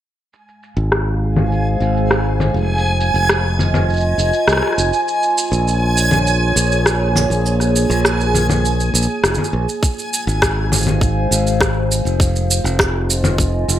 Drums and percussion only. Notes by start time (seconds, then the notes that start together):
0.33 shaker
0.48 shaker
0.63 shaker
0.78 shaker
0.92 cross-stick, shaker
1.36 low conga, shaker
1.52 shaker
1.82 shaker
1.97 shaker
2.11 cross-stick, shaker
2.40 low conga, shaker
2.56 shaker
2.78 shaker
2.86 shaker
3.00 shaker
3.15 shaker
3.29 cross-stick, shaker
3.59 low conga, shaker
3.74 low conga, shaker
3.89 shaker
3.93 shaker
3.97 shaker
4.00 shaker
4.19 shaker
4.33 shaker
4.48 cross-stick, shaker
4.53 cross-stick
4.57 cross-stick
4.63 cross-stick
4.67 cross-stick
4.73 cross-stick
4.78 shaker
4.93 shaker
5.08 shaker
5.23 shaker
5.38 shaker
5.53 shaker
5.68 shaker
5.97 shaker
6.11 low conga, shaker
6.27 shaker
6.57 shaker
6.72 shaker
6.86 cross-stick, shaker
7.16 low conga, shaker
7.32 shaker
7.46 shaker
7.60 cross-stick, shaker
7.76 shaker
7.91 shaker
8.05 cross-stick, shaker
8.20 shaker
8.34 low conga, shaker
8.49 low conga, shaker
8.65 shaker
8.80 shaker
8.95 shaker
9.02 shaker
9.24 cross-stick, shaker
9.34 low conga, shaker
9.44 shaker
9.69 shaker
9.83 kick, shaker
9.99 shaker
10.13 shaker
10.28 shaker
10.42 kick, cross-stick, shaker
10.72 low conga, shaker
10.75 shaker
10.78 shaker
10.80 shaker
10.83 shaker
10.85 low conga, shaker
10.88 shaker
11.01 kick, shaker
11.32 shaker
11.47 shaker
11.61 kick, cross-stick, shaker
11.92 shaker
12.06 shaker
12.20 kick, shaker
12.36 shaker
12.51 shaker
12.66 shaker
12.79 kick, cross-stick, shaker
13.10 shaker
13.24 low conga, shaker
13.38 kick, shaker
13.69 shaker